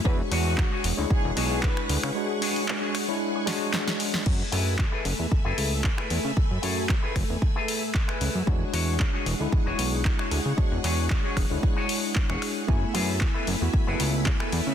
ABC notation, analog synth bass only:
X:1
M:4/4
L:1/16
Q:"Swing 16ths" 1/4=114
K:F#m
V:1 name="Analog synth bass" clef=bass
E,, z E,,2 z2 E,,, D,, E,,, E,,, B,,,2 z2 D,, C, | z16 | F,, z F,,2 z2 F,,, E,, F,,, F,,, C,,2 z2 E,, C, | z F,, F,,2 z2 F,,, E,, z6 C,, F,, |
E,, z E,,2 z2 E,,, D,, E,,, E,,, B,,,2 z2 D,, C, | E,, E,, E,,2 z2 E,,, D,, z4 z E,,, z2 | F,, z F,,2 z2 F,,, E,, F,,, F,,, C,,2 z2 E,, C, |]